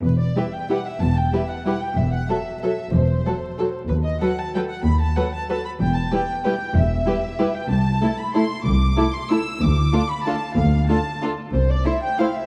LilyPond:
<<
  \new Staff \with { instrumentName = "Violin section" } { \time 3/4 \key e \minor \tempo 4 = 186 b'8 d''8 e''8 g''8 fis''8 e''8 | a''8 g''8 e''8 fis''8 fis''8 g''8 | e''8 fis''8 e''4 e''4 | c''2~ c''8 r8 |
b'8 dis''8 fis''8 a''8 g''8 fis''8 | b''8 a''8 fis''8 a''8 a''8 b''8 | g''8 a''8 g''4 g''4 | e''2~ e''8 g''8 |
\key a \minor a''4. b''8 c'''4 | d'''4. c'''8 e'''4 | d'''4. b''8 a''4 | f''4 a''4 r4 |
c''8 d''8 e''8 g''8 f''8 e''8 | }
  \new Staff \with { instrumentName = "Violin section" } { \time 3/4 \key e \minor r4 <g' b'>4 <g' b'>4 | r4 <g' b'>4 <g' b'>4 | r4 a'4 a'4 | r4 a'4 a'4 |
r4 <a' b'>4 <a' b'>4 | r4 <a' b'>4 <a' b'>4 | r4 <g' b'>4 <g' b'>4 | r4 <g' b'>4 <g' b'>4 |
\key a \minor r4 <e' a'>4 <e' a'>4 | r4 <e' a'>4 <e' a'>4 | r4 <f' a'>4 <f' a'>4 | r4 <f' a'>4 <f' a'>4 |
r4 <e' c''>4 <e' c''>4 | }
  \new Staff \with { instrumentName = "Viola section" } { \time 3/4 \key e \minor r4 <g e'>4 <g e'>4 | r4 <g e'>4 <g e'>4 | r4 <fis fis'>4 <fis fis'>4 | r4 <fis fis'>4 <fis fis'>4 |
r4 <fis fis'>4 <fis fis'>4 | r4 <fis fis'>4 <fis fis'>4 | r4 <g e'>4 <g e'>4 | r4 <g e'>4 <g e'>4 |
\key a \minor r4 <a e'>4 <a e'>4 | r4 <a e'>4 <a e'>4 | r4 <a d'>4 <a d'>4 | r4 <a d'>4 <a d'>4 |
r4 <a e'>4 <a e'>4 | }
  \new Staff \with { instrumentName = "Cello section" } { \clef bass \time 3/4 \key e \minor e,4 r2 | e,4 r2 | e,4 r2 | e,4 r2 |
dis,4 r2 | dis,4 r2 | e,4 r2 | e,4 r2 |
\key a \minor c,4 r2 | c,4 r2 | d,4 r2 | d,4 r2 |
c,4 r2 | }
  \new Staff \with { instrumentName = "Double bass section" } { \clef bass \time 3/4 \key e \minor e,,4 r2 | e,,4 r2 | e,,4 r2 | e,,4 r2 |
dis,4 r2 | dis,4 r2 | e,,4 r2 | e,,4 r2 |
\key a \minor c,4 r2 | c,4 r2 | d,4 r2 | d,4 r2 |
c,4 r2 | }
>>